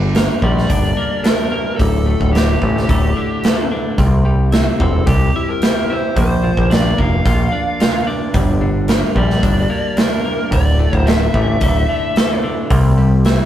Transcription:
Already playing: G1 G2 D3
0.15 A#3, snare, open hi-hat
0.42 A#1 G3 D5, kick
0.58 snare
0.70 G1 D4, kick, open hi-hat
0.97 A#3
1.23 D4 A#4, snare, open hi-hat
1.52 A#3
1.76 D1 D2 A4, kick
1.80 open hi-hat
2.07 A2
2.20 D1, kick
2.33 D3 G4, snare, open hi-hat
2.62 A1 A2, kick
2.77 snare
2.89 D1 A3, kick, open hi-hat
3.16 D3
3.44 A3, snare, open hi-hat
3.72 D3
3.98 C2 C3, kick, open hi-hat
4.25 G3
4.52 E4, snare, open hi-hat
4.80 E1 C4 A4, kick
5.07 C2 G4, kick, open hi-hat
5.36 E4
5.50 A#4
5.62 G4, snare, open hi-hat
5.90 E4 C5
6.16 A#1 A#2 C5, kick, open hi-hat
6.44 F3
6.57 A#1, kick
6.70 D4 D5, snare, open hi-hat
6.98 F1 A#3 F5, kick
7.25 A#1 F4, kick, open hi-hat
7.52 D4
7.80 F4, snare, open hi-hat
8.07 D4
8.34 G1 G2, kick, open hi-hat
8.61 D3
8.88 A#3, snare, open hi-hat
9.15 A#1 G3 D5, kick
9.30 snare
9.43 G1 D4, kick, open hi-hat
9.70 A#3
9.97 D4 A#4, snare, open hi-hat
10.25 A#3
10.51 D1 D2 D5, kick, open hi-hat
10.79 A2
10.93 D1, kick
10.97 C5
11.06 D3 E5, snare, open hi-hat
11.34 A1 A2, kick
11.61 D1 A3, kick, open hi-hat
11.89 D3
12.16 A3, snare, open hi-hat
12.44 D3
12.70 C2 C3, kick, open hi-hat
12.98 G3
13.25 E4, snare, open hi-hat

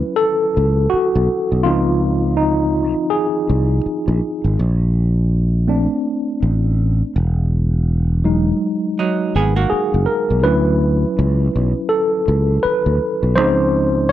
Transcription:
Already playing: F#3 C#4 E4 B4
0.16 A4
0.57 C#2
0.90 F#4, muted fretless electric bass stroke
1.15 B1
1.52 B1
1.63 C#2 F3 C4 D#4 F4
2.37 D#4
3.10 G#4
3.49 C2
3.86 muted fretless electric bass stroke
4.08 A#1
4.44 G#1
4.59 A#1
5.68 A3 C4 D4
6.43 A1
7.16 E1
8.24 F#3 G#3 D#4
8.99 F#3 D#4
9.35 G#1 B3 G#4
9.56 A#3 F#4
9.70 G#4, muted fretless electric bass stroke
9.94 F#1
10.06 A#4
10.30 B1
10.44 D2 F#3 C#4 E4 B4
11.19 C#2
11.56 B1
11.89 A4
12.28 C#2
12.63 B4, muted fretless electric bass stroke
12.86 D2
13.23 B1
13.36 C#2 F3 C4 D#4 C5

